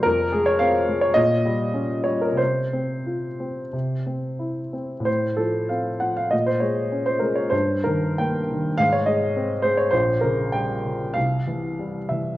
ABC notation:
X:1
M:4/4
L:1/16
Q:1/4=96
K:Fm
V:1 name="Grand piano"
B2 A d f3 d e6 d B | c12- c2 z2 | c2 =A2 f2 _g f e c d3 c B d | c2 B2 g4 f d e4 c d |
c2 B2 g4 f6 =e2 |]
V:2 name="Grand piano" clef=bass
F,,2 A,2 C2 A,2 B,,2 G,2 D2 G,2 | C,2 C2 F2 C2 C,2 C2 =E2 C2 | =A,,2 F,2 C2 F,2 B,,2 _A,2 D2 A,2 | G,,2 E,2 B,2 E,2 A,,2 A,2 C2 A,2 |
B,,,2 D,2 G,2 D,2 C,,2 =E,2 G,2 E,2 |]